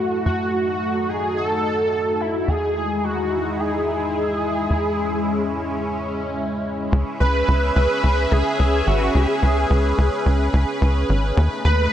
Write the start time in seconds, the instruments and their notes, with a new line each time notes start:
Already playing: analog synth bass F#2, analog synth pad A3 E4 F#4, analog synth lead F#4
0.25 analog synth bass F#2, analog synth pad D#4, analog synth lead F#4
1.09 analog synth lead G#4
1.37 analog synth lead A4
2.20 analog synth lead E4
2.48 analog synth bass E2, analog synth pad G#3 D#4 E4, analog synth lead G#4
3.04 analog synth lead F#4
3.60 analog synth lead G#4
4.70 analog synth bass E2, analog synth pad C#4
6.92 analog synth bass C#2, analog synth pad C#4 G#4 B4 E5
7.20 analog synth bass C#2, analog synth lead B4
7.48 analog synth bass C#2
7.76 analog synth bass C#2, analog synth lead B4
8.03 analog synth bass C#2
8.31 analog synth bass C#2, analog synth lead G#4
8.59 analog synth bass C#2
8.87 analog synth bass G#1, analog synth lead F#4
9.14 analog synth bass C#2, analog synth lead G#4
9.42 analog synth bass C#2
9.70 analog synth bass C#2
9.98 analog synth bass C#2
10.26 analog synth bass C#2
10.53 analog synth bass C#2
10.81 analog synth bass C#2
11.09 analog synth bass G#1
11.37 analog synth bass D#2, analog synth pad A3 D#4
11.64 analog synth bass D#2, analog synth lead B4